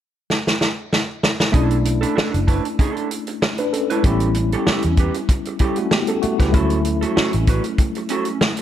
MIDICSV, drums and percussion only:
0, 0, Header, 1, 2, 480
1, 0, Start_track
1, 0, Key_signature, 2, "minor"
1, 0, Tempo, 625456
1, 1185, Time_signature, 4, 2, 24, 8
1, 6614, End_track
2, 0, Start_track
2, 0, Title_t, "Drums"
2, 230, Note_on_c, 9, 38, 59
2, 307, Note_off_c, 9, 38, 0
2, 362, Note_on_c, 9, 38, 64
2, 439, Note_off_c, 9, 38, 0
2, 469, Note_on_c, 9, 38, 70
2, 545, Note_off_c, 9, 38, 0
2, 711, Note_on_c, 9, 38, 79
2, 788, Note_off_c, 9, 38, 0
2, 947, Note_on_c, 9, 38, 90
2, 1024, Note_off_c, 9, 38, 0
2, 1075, Note_on_c, 9, 38, 93
2, 1152, Note_off_c, 9, 38, 0
2, 1179, Note_on_c, 9, 42, 73
2, 1181, Note_on_c, 9, 36, 87
2, 1256, Note_off_c, 9, 42, 0
2, 1258, Note_off_c, 9, 36, 0
2, 1309, Note_on_c, 9, 42, 45
2, 1385, Note_off_c, 9, 42, 0
2, 1422, Note_on_c, 9, 42, 72
2, 1499, Note_off_c, 9, 42, 0
2, 1556, Note_on_c, 9, 42, 48
2, 1632, Note_off_c, 9, 42, 0
2, 1674, Note_on_c, 9, 38, 101
2, 1751, Note_off_c, 9, 38, 0
2, 1796, Note_on_c, 9, 42, 51
2, 1873, Note_off_c, 9, 42, 0
2, 1903, Note_on_c, 9, 36, 77
2, 1903, Note_on_c, 9, 42, 67
2, 1980, Note_off_c, 9, 36, 0
2, 1980, Note_off_c, 9, 42, 0
2, 2034, Note_on_c, 9, 42, 47
2, 2110, Note_off_c, 9, 42, 0
2, 2142, Note_on_c, 9, 36, 83
2, 2144, Note_on_c, 9, 42, 68
2, 2218, Note_off_c, 9, 36, 0
2, 2221, Note_off_c, 9, 42, 0
2, 2276, Note_on_c, 9, 42, 38
2, 2353, Note_off_c, 9, 42, 0
2, 2386, Note_on_c, 9, 42, 69
2, 2463, Note_off_c, 9, 42, 0
2, 2508, Note_on_c, 9, 42, 45
2, 2585, Note_off_c, 9, 42, 0
2, 2627, Note_on_c, 9, 38, 108
2, 2703, Note_off_c, 9, 38, 0
2, 2745, Note_on_c, 9, 42, 47
2, 2822, Note_off_c, 9, 42, 0
2, 2866, Note_on_c, 9, 42, 71
2, 2943, Note_off_c, 9, 42, 0
2, 2994, Note_on_c, 9, 42, 52
2, 3071, Note_off_c, 9, 42, 0
2, 3098, Note_on_c, 9, 42, 73
2, 3100, Note_on_c, 9, 36, 90
2, 3175, Note_off_c, 9, 42, 0
2, 3177, Note_off_c, 9, 36, 0
2, 3223, Note_on_c, 9, 42, 45
2, 3300, Note_off_c, 9, 42, 0
2, 3334, Note_on_c, 9, 42, 75
2, 3411, Note_off_c, 9, 42, 0
2, 3471, Note_on_c, 9, 42, 43
2, 3547, Note_off_c, 9, 42, 0
2, 3582, Note_on_c, 9, 38, 101
2, 3658, Note_off_c, 9, 38, 0
2, 3702, Note_on_c, 9, 42, 50
2, 3779, Note_off_c, 9, 42, 0
2, 3815, Note_on_c, 9, 42, 62
2, 3818, Note_on_c, 9, 36, 77
2, 3892, Note_off_c, 9, 42, 0
2, 3895, Note_off_c, 9, 36, 0
2, 3946, Note_on_c, 9, 42, 46
2, 4023, Note_off_c, 9, 42, 0
2, 4058, Note_on_c, 9, 36, 81
2, 4059, Note_on_c, 9, 42, 69
2, 4135, Note_off_c, 9, 36, 0
2, 4136, Note_off_c, 9, 42, 0
2, 4185, Note_on_c, 9, 42, 37
2, 4262, Note_off_c, 9, 42, 0
2, 4290, Note_on_c, 9, 42, 71
2, 4298, Note_on_c, 9, 36, 75
2, 4367, Note_off_c, 9, 42, 0
2, 4375, Note_off_c, 9, 36, 0
2, 4418, Note_on_c, 9, 42, 50
2, 4495, Note_off_c, 9, 42, 0
2, 4537, Note_on_c, 9, 38, 104
2, 4614, Note_off_c, 9, 38, 0
2, 4658, Note_on_c, 9, 42, 50
2, 4735, Note_off_c, 9, 42, 0
2, 4777, Note_on_c, 9, 42, 71
2, 4853, Note_off_c, 9, 42, 0
2, 4908, Note_on_c, 9, 36, 72
2, 4911, Note_on_c, 9, 42, 52
2, 4917, Note_on_c, 9, 38, 31
2, 4985, Note_off_c, 9, 36, 0
2, 4987, Note_off_c, 9, 42, 0
2, 4993, Note_off_c, 9, 38, 0
2, 5016, Note_on_c, 9, 42, 77
2, 5018, Note_on_c, 9, 36, 87
2, 5093, Note_off_c, 9, 42, 0
2, 5095, Note_off_c, 9, 36, 0
2, 5142, Note_on_c, 9, 42, 44
2, 5219, Note_off_c, 9, 42, 0
2, 5254, Note_on_c, 9, 42, 69
2, 5331, Note_off_c, 9, 42, 0
2, 5390, Note_on_c, 9, 42, 47
2, 5467, Note_off_c, 9, 42, 0
2, 5502, Note_on_c, 9, 38, 100
2, 5579, Note_off_c, 9, 38, 0
2, 5624, Note_on_c, 9, 42, 49
2, 5700, Note_off_c, 9, 42, 0
2, 5734, Note_on_c, 9, 42, 67
2, 5737, Note_on_c, 9, 36, 80
2, 5811, Note_off_c, 9, 42, 0
2, 5813, Note_off_c, 9, 36, 0
2, 5861, Note_on_c, 9, 42, 45
2, 5938, Note_off_c, 9, 42, 0
2, 5972, Note_on_c, 9, 42, 67
2, 5974, Note_on_c, 9, 36, 77
2, 6049, Note_off_c, 9, 42, 0
2, 6051, Note_off_c, 9, 36, 0
2, 6101, Note_on_c, 9, 42, 37
2, 6178, Note_off_c, 9, 42, 0
2, 6206, Note_on_c, 9, 42, 73
2, 6283, Note_off_c, 9, 42, 0
2, 6331, Note_on_c, 9, 42, 46
2, 6407, Note_off_c, 9, 42, 0
2, 6454, Note_on_c, 9, 38, 102
2, 6531, Note_off_c, 9, 38, 0
2, 6575, Note_on_c, 9, 42, 49
2, 6614, Note_off_c, 9, 42, 0
2, 6614, End_track
0, 0, End_of_file